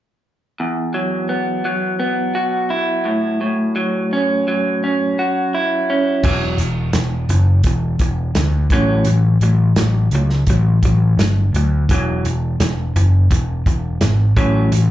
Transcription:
0.60 2.36 E2 medium
0.94 1.65 F#3 medium
1.29 1.98 B3 medium
1.65 3.75 F#3 medium
2.00 3.06 B3 medium
2.35 5.19 F#4 medium
2.70 3.79 E4 medium
3.05 3.40 A2 medium
3.41 5.18 A2 medium
3.76 4.47 F#3 medium
4.13 4.82 C#4 medium
4.48 6.23 F#3 medium
4.84 5.89 C#4 medium
5.19 6.24 F#4 medium
5.54 6.24 E4 medium
5.90 6.24 C#4 medium
6.23 6.54 E1 medium
6.23 6.57 E2 medium
6.23 6.57 E3 medium
6.23 6.57 F#3 medium
6.23 kick medium
6.23 crash medium
6.58 6.89 E1 medium
6.58 6.91 E2 medium
6.58 6.92 E3 medium
6.58 closed hi-hat medium
6.93 7.24 E1 medium
6.93 7.26 E2 medium
6.93 7.27 E3 medium
6.93 snare medium
6.93 closed hi-hat medium
7.29 7.60 F#1 medium
7.29 7.62 E2 medium
7.29 7.62 E3 medium
7.29 closed hi-hat medium
7.63 7.95 E1 medium
7.63 7.97 E2 medium
7.63 7.98 E3 medium
7.63 kick medium
7.63 closed hi-hat medium
7.99 8.30 E1 medium
7.99 8.32 E2 medium
7.99 8.33 E3 medium
7.99 kick medium
7.99 closed hi-hat medium
8.35 8.66 D2 medium
8.35 8.68 E2 medium
8.35 8.68 E3 medium
8.35 snare medium
8.35 closed hi-hat medium
8.70 9.01 A1 medium
8.70 9.05 A2 medium
8.70 9.05 F#3 medium
8.70 9.05 C#4 medium
8.70 kick medium
8.70 closed hi-hat medium
9.05 9.36 A1 medium
9.05 9.38 A2 medium
9.05 9.38 F#3 medium
9.05 closed hi-hat medium
9.41 9.72 A1 medium
9.41 9.74 A2 medium
9.41 9.74 F#3 medium
9.41 closed hi-hat medium
9.76 10.07 A1 medium
9.76 10.09 A2 medium
9.76 10.10 F#3 medium
9.76 snare loud
9.76 closed hi-hat medium
10.11 10.42 C#2 medium
10.11 10.45 A2 medium
10.11 10.45 F#3 medium
10.11 closed hi-hat soft
10.30 snare soft
10.47 10.78 A1 medium
10.47 10.80 A2 medium
10.47 10.80 F#3 medium
10.47 kick medium
10.47 closed hi-hat medium
10.83 11.13 A1 medium
10.83 11.16 A2 medium
10.83 11.16 F#3 medium
10.83 kick medium
10.83 closed hi-hat soft
11.18 11.48 G1 medium
11.18 11.51 A2 medium
11.18 11.51 F#3 medium
11.18 snare medium
11.18 closed hi-hat medium
11.53 11.84 D2 medium
11.53 11.86 A2 medium
11.53 11.87 F#3 medium
11.53 closed hi-hat medium
11.89 12.19 E1 medium
11.89 12.23 E2 medium
11.89 12.23 E3 medium
11.89 12.23 F#3 medium
11.89 kick medium
11.89 closed hi-hat medium
12.24 12.55 E1 medium
12.24 12.57 E2 medium
12.24 12.57 E3 medium
12.24 closed hi-hat medium
12.60 12.90 E1 medium
12.60 12.92 E2 medium
12.60 12.93 E3 medium
12.60 snare medium
12.60 closed hi-hat medium
12.96 13.26 F#1 medium
12.96 13.27 E2 medium
12.96 13.28 E3 medium
12.96 closed hi-hat medium
13.30 13.61 E1 medium
13.30 13.63 E2 medium
13.30 13.63 E3 medium
13.30 kick medium
13.30 closed hi-hat medium
13.66 13.97 E1 medium
13.66 13.98 E2 medium
13.66 13.98 E3 medium
13.66 kick medium
13.66 closed hi-hat medium
14.01 14.32 G#1 medium
14.01 14.33 E2 medium
14.01 14.33 E3 medium
14.01 snare medium
14.01 closed hi-hat medium
14.37 14.67 A1 medium
14.37 14.70 A2 medium
14.37 14.70 F#3 medium
14.37 14.70 C#4 medium
14.37 kick medium
14.37 closed hi-hat medium
14.72 14.91 A1 medium
14.72 14.91 A2 medium
14.72 14.91 F#3 medium
14.72 closed hi-hat medium

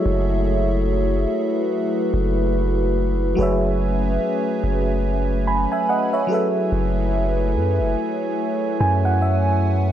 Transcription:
0.00 2.91 F#3 medium
0.00 3.35 A3 medium
0.00 3.35 E4 medium
0.00 2.92 F#4 medium
0.00 3.35 F#4 medium
0.00 2.93 G#4 medium
0.00 2.94 A4 medium
0.00 1.29 C#5 medium
0.00 2.95 E5 medium
0.06 1.26 F#1 loud
1.30 3.36 B4 medium
2.14 3.35 F#1 loud
3.35 4.19 F#1 loud
3.35 6.25 F#3 medium
3.35 6.27 A3 medium
3.35 6.27 C#4 medium
3.35 6.25 F#4 medium
3.35 6.26 G#4 medium
3.35 7.93 B4 medium
3.35 9.92 G#5 medium
3.40 6.27 B4 medium
3.40 5.44 C#5 medium
3.40 5.45 E5 medium
4.64 5.67 F#1 loud
5.47 5.70 G#5 medium
5.47 5.70 B5 medium
5.72 5.88 E5 medium
5.72 5.88 G#5 medium
5.89 6.12 D#5 medium
5.89 6.12 F#5 medium
6.13 6.53 C#5 medium
6.13 6.33 E5 medium
6.27 9.58 F#3 medium
6.27 9.92 A3 medium
6.27 9.92 E4 medium
6.27 9.59 F#4 medium
6.27 9.59 G#4 medium
6.31 9.60 A4 medium
6.31 9.61 B4 medium
6.31 9.21 E5 medium
6.72 7.57 F#1 loud
7.56 7.81 F#2 medium
7.80 7.96 F#1 medium
7.97 9.92 C#5 medium
8.81 9.92 F#2 loud
8.81 9.03 G#5 medium
9.05 9.21 F#5 medium
9.22 9.92 E5 medium

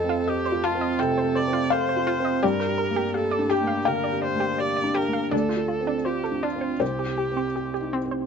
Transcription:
0.00 0.95 F2 soft
0.00 0.42 C4 soft
0.00 0.18 A4 soft
0.00 0.30 A4 soft
0.00 0.59 D#5 medium
0.09 0.20 F4 medium
0.27 0.66 G4 medium
0.27 0.66 A4 soft
0.27 0.38 D#5 medium
0.45 0.56 C5 medium
0.52 0.90 F4 soft
0.64 0.74 F4 medium
0.64 1.02 F4 soft
0.64 0.97 A5 medium
0.75 1.14 C4 soft
0.81 0.92 D#5 medium
0.99 1.38 C3 soft
0.99 1.10 F4 medium
0.99 1.38 A4 medium
0.99 1.67 G5 medium
1.18 1.28 C5 medium
1.24 1.62 A4 soft
1.35 1.46 C5 medium
1.35 1.73 D5 medium
1.48 1.86 C4 soft
1.53 1.64 F4 medium
1.70 2.10 A4 soft
1.70 1.82 C5 medium
1.70 2.45 C5 medium
1.70 2.38 F5 medium
1.89 2.00 C5 medium
1.96 2.34 F4 soft
2.07 2.18 F4 medium
2.20 2.43 C4 soft
2.25 2.35 D#5 medium
2.43 3.83 G2 medium
2.43 2.53 G4 medium
2.43 3.14 A#4 medium
2.43 3.47 D5 medium
2.60 2.71 A#4 soft
2.67 3.05 G4 soft
2.78 2.89 A#4 soft
2.91 3.29 A#3 soft
2.96 3.07 G4 medium
3.14 3.53 G4 soft
3.14 3.52 A4 medium
3.14 3.25 F5 medium
3.31 3.43 D5 medium
3.39 3.77 D4 soft
3.50 3.61 G4 medium
3.50 3.88 G4 medium
3.50 3.84 G5 medium
3.63 4.01 A#3 soft
3.67 3.78 F5 medium
3.85 4.26 D3 soft
3.85 3.96 G4 medium
3.85 4.23 A#4 medium
3.85 5.27 F5 medium
4.04 4.15 D5 medium
4.12 4.50 G4 soft
4.22 4.61 C5 medium
4.22 4.33 D5 soft
4.36 4.74 A#3 soft
4.40 4.51 G4 medium
4.58 4.99 G4 soft
4.58 4.70 D5 medium
4.58 4.98 D5 medium
4.76 4.88 D5 medium
4.84 5.22 D4 soft
4.95 5.06 G4 medium
4.95 5.32 A#4 soft
5.08 5.32 A#3 soft
5.13 5.24 F5 medium
5.31 6.76 D2 soft
5.31 5.43 D4 medium
5.31 6.07 A4 soft
5.31 6.76 D5 medium
5.49 5.61 F4 soft
5.56 5.96 F4 soft
5.68 5.79 F4 soft
5.81 6.20 C4 soft
5.87 5.98 D4 medium
6.05 6.45 F4 soft
6.05 6.45 G4 soft
6.05 6.16 C5 medium
6.24 6.35 A4 medium
6.31 6.71 D4 soft
6.43 6.54 D4 medium
6.43 6.83 F4 soft
6.56 6.81 C4 soft
6.61 6.73 C5 soft
6.80 8.26 C2 soft
6.80 6.91 C4 medium
6.80 7.93 G4 soft
6.80 7.51 C5 soft
6.99 7.10 G4 soft
7.06 7.46 G4 soft
7.18 7.29 G4 soft
7.32 7.71 C4 soft
7.37 7.48 C4 medium
7.56 7.67 G4 soft
7.56 7.96 G4 soft
7.74 7.85 G4 medium
7.80 8.20 D#4 soft
7.93 8.04 C4 medium
8.05 8.26 C4 soft
8.11 8.22 C5 soft

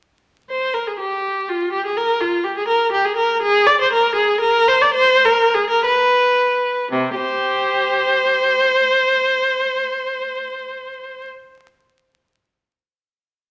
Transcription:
0.50 0.73 C5 medium
0.74 0.87 A#4 medium
0.87 1.00 G#4 medium
1.00 1.48 G4 medium
1.49 1.73 F4 medium
1.72 1.84 G4 medium
1.85 1.97 G#4 medium
1.97 2.21 A#4 medium
2.21 2.44 F4 medium
2.44 2.56 G4 medium
2.57 2.68 G#4 medium
2.68 2.91 A#4 medium
2.92 3.04 G4 medium
3.05 3.17 G#4 medium
3.17 3.42 A#4 medium
3.42 3.68 G#4 loud
3.67 3.80 D5 medium
3.81 3.93 C5 medium
3.93 4.17 A#4 medium
4.15 4.40 G#4 medium
4.41 4.67 A#4 medium
4.68 4.82 C5 medium
4.82 4.96 D5 medium
4.94 5.23 C5 loud
5.25 5.54 A#4 medium
5.54 5.70 G#4 medium
5.70 5.85 A#4 medium
5.85 6.90 B4 medium
6.92 7.16 C3 medium
7.15 8.55 G4 medium
7.15 11.26 C5 medium

